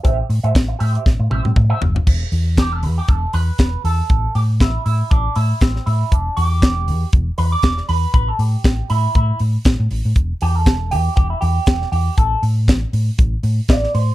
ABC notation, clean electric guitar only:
X:1
M:4/4
L:1/16
Q:"Swing 16ths" 1/4=119
K:Em
V:1 name="Clean electric guitar"
[Gce]2 z [Gce] z2 [Gce] [Gce] z2 [Gce]2 z [Gce]2 z | z4 G A B G A2 B4 A2- | A2 G2 E2 E2 D2 E2 C2 E2 | D2 G6 z2 B d3 B2 |
B A G4 E2 E2 z6 | z2 G A3 G2 G E G4 G2 | A2 z8 z2 d2 c2 |]